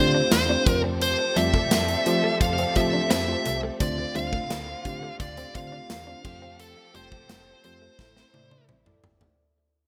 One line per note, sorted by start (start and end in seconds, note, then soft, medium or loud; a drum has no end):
0.00 0.22 D3 loud
0.00 0.64 D3 medium
0.00 0.68 D3 medium
0.00 0.48 A3 medium
0.00 0.64 A3 medium
0.00 0.49 C4 medium
0.00 6.20 C4 medium
0.00 0.49 D4 medium
0.00 0.49 F4 medium
0.00 0.64 F4 medium
0.00 0.30 G4 medium
0.00 0.31 C5 medium
0.00 0.50 C5 medium
0.15 0.24 D4 medium
0.32 0.57 E2 medium
0.32 0.81 C5 loud
0.32 snare loud
0.32 closed hi-hat loud
0.32 tambourine medium
0.48 0.65 A3 medium
0.48 0.65 C4 medium
0.48 0.67 D4 medium
0.48 0.59 D4 medium
0.48 0.65 F4 medium
0.48 0.66 C5 medium
0.66 1.17 F2 loud
0.66 3.77 F3 medium
0.66 1.22 A3 medium
0.66 1.22 C4 medium
0.66 1.22 F4 medium
0.66 3.77 G4 medium
0.66 1.22 G4 medium
0.66 3.77 A4 loud
0.66 1.23 C5 medium
0.66 muted clean electric guitar stroke soft
0.66 kick loud
0.66 closed hi-hat medium
0.84 0.94 C4 medium
1.01 1.38 C5 loud
1.01 closed hi-hat medium
1.19 muted clean electric guitar stroke soft
1.36 1.61 F2 loud
1.36 1.46 G3 medium
1.36 1.80 A3 medium
1.36 1.80 C4 medium
1.36 1.80 F4 medium
1.36 1.81 G4 medium
1.36 1.81 D5 medium
1.36 2.37 E5 loud
1.36 closed hi-hat medium
1.54 1.64 A3 medium
1.54 kick medium
1.71 1.96 F2 loud
1.71 1.82 G3 medium
1.71 snare loud
1.71 closed hi-hat medium
1.71 tambourine medium
1.88 closed hi-hat medium
2.06 2.31 F3 loud
2.06 2.50 A3 medium
2.06 2.50 C4 medium
2.06 2.50 F4 medium
2.06 2.50 G4 medium
2.06 2.50 C5 medium
2.06 muted clean electric guitar stroke soft
2.06 closed hi-hat medium
2.24 2.34 A3 medium
2.41 2.66 F2 loud
2.41 2.74 F5 loud
2.41 kick loud
2.41 closed hi-hat medium
2.58 2.69 C4 medium
2.58 closed hi-hat medium
2.76 3.01 F3 loud
2.76 3.09 A3 medium
2.76 3.09 C4 medium
2.76 3.09 F4 medium
2.76 3.09 G4 medium
2.76 3.09 C5 medium
2.76 3.10 E5 loud
2.76 muted clean electric guitar stroke soft
2.76 kick medium
2.76 closed hi-hat medium
2.93 3.03 D4 medium
3.11 3.36 F2 loud
3.11 3.21 C4 medium
3.11 3.60 E5 loud
3.11 snare loud
3.11 closed hi-hat loud
3.11 tambourine medium
3.28 3.61 A3 medium
3.28 3.61 C4 medium
3.28 3.61 F4 medium
3.28 3.61 G4 medium
3.28 3.61 C5 medium
3.46 3.71 C2 loud
3.46 muted clean electric guitar stroke soft
3.46 closed hi-hat medium
3.63 3.73 A3 medium
3.80 4.06 D2 loud
3.80 6.22 D3 medium
3.80 4.81 D3 medium
3.80 4.02 A3 medium
3.80 6.22 A3 medium
3.80 4.02 C4 medium
3.80 4.02 D4 medium
3.80 6.22 F4 medium
3.80 4.03 F4 medium
3.80 4.03 C5 medium
3.80 4.16 D5 loud
3.80 kick loud
3.80 closed hi-hat medium
3.98 muted clean electric guitar stroke soft
4.15 4.41 D2 loud
4.15 4.25 G3 medium
4.15 4.59 A3 medium
4.15 4.59 C4 medium
4.15 4.59 D4 medium
4.15 4.59 F4 medium
4.15 4.59 C5 medium
4.15 5.16 F5 loud
4.15 closed hi-hat medium
4.33 4.43 A3 medium
4.33 kick medium
4.50 4.75 D2 loud
4.50 4.60 G3 medium
4.50 snare loud
4.50 closed hi-hat loud
4.50 tambourine medium
4.84 5.10 D3 loud
4.84 5.29 A3 medium
4.84 5.29 C4 medium
4.84 5.29 D4 medium
4.84 5.29 F4 medium
4.84 5.29 G4 medium
4.84 muted clean electric guitar stroke soft
4.84 kick medium
4.84 closed hi-hat medium
5.03 5.13 A3 medium
5.20 5.45 D2 loud
5.20 5.55 D5 loud
5.20 kick loud
5.20 closed hi-hat medium
5.37 5.48 C4 medium
5.37 closed hi-hat medium
5.54 5.80 D3 loud
5.54 5.87 A3 medium
5.54 5.88 C4 medium
5.54 5.88 D4 medium
5.54 5.88 F4 medium
5.54 5.88 C5 medium
5.54 6.63 F5 loud
5.54 muted clean electric guitar stroke soft
5.54 kick medium
5.54 closed hi-hat medium
5.72 5.82 D4 medium
5.90 6.15 E2 medium
5.90 snare loud
5.90 closed hi-hat loud
5.90 tambourine medium
6.06 6.22 A3 medium
6.06 6.23 C4 medium
6.06 6.24 D4 medium
6.06 6.17 D4 medium
6.06 6.23 F4 medium
6.06 6.24 C5 medium
6.23 6.75 F2 loud
6.23 7.97 F3 medium
6.23 6.80 A3 medium
6.23 6.80 C4 medium
6.23 9.35 C4 medium
6.23 6.80 F4 medium
6.23 6.80 G4 medium
6.23 7.97 G4 medium
6.23 7.97 A4 medium
6.23 6.81 C5 medium
6.23 muted clean electric guitar stroke soft
6.23 kick loud
6.23 crash medium
6.42 6.52 C4 medium
6.60 6.95 A4 loud
6.60 closed hi-hat medium
6.77 muted clean electric guitar stroke soft
6.93 7.20 F1 loud
6.93 7.05 G3 medium
6.93 7.38 A3 medium
6.93 7.38 C4 medium
6.93 7.38 F4 medium
6.93 7.38 G4 medium
6.93 7.38 C5 medium
6.93 7.63 C5 loud
6.93 closed hi-hat medium
7.12 7.22 A3 medium
7.12 kick medium
7.29 7.55 F1 loud
7.29 7.39 G3 medium
7.29 snare loud
7.29 closed hi-hat loud
7.29 tambourine medium
7.64 7.90 F2 loud
7.64 7.99 A3 medium
7.64 7.99 C4 medium
7.64 7.99 F4 medium
7.64 7.99 G4 medium
7.64 8.65 C5 medium
7.64 7.98 C5 medium
7.64 muted clean electric guitar stroke soft
7.64 closed hi-hat medium
7.82 7.92 A3 medium
7.98 8.24 A1 loud
7.98 9.00 A2 medium
7.98 9.37 A3 medium
7.98 8.27 E4 medium
7.98 9.37 E4 medium
7.98 8.27 A4 medium
7.98 8.27 C5 medium
7.98 kick loud
7.98 snare medium
8.16 8.27 C4 medium
8.16 snare medium
8.33 8.59 A2 medium
8.33 8.67 E4 medium
8.33 8.67 A4 medium
8.33 8.67 D5 medium
8.33 muted clean electric guitar stroke soft
8.33 high tom medium
8.51 8.61 D4 medium
8.51 high tom medium
8.69 8.94 A1 medium
8.69 8.79 C4 medium
8.69 mid tom medium
8.86 9.19 E4 medium
8.86 9.19 A4 medium
8.86 9.20 D5 loud
8.86 mid tom medium
9.04 9.29 G1 loud
9.04 muted clean electric guitar stroke soft
9.04 floor tom loud
9.21 9.32 A3 medium
9.21 floor tom loud